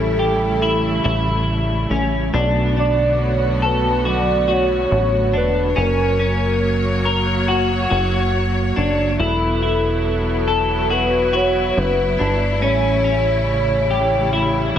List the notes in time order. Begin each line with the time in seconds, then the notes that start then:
Already playing: A1 C#3 E3 G3 A3 C#4 E4 A4
0.19 G4
0.62 E4
1.04 A1 E4
1.90 A1 C#4
2.33 B1 D3 F#3 A3 B3 D4 F#4
2.77 D4 D5
3.22 C#5
3.62 A4 B4
4.05 F#4 D5
4.48 F#4 C#5
4.91 A1
5.33 E1 D4 B4
5.76 F#1 F#3 A#3 C#4 A#4 C#5
6.19 C#4
7.05 A#4
7.48 F#4
7.90 F#1 F#4
8.76 F#1 D4
9.20 E1 F#3 B3 E4 A4
9.62 E4
10.48 A4
10.90 F#4 B4
11.33 F#4 C#5
11.77 F#1 B4
12.19 G1 D4
12.61 A1 C#3 E3 G3 A3 C#4 C#5
13.04 C#4
13.90 G4
14.33 E4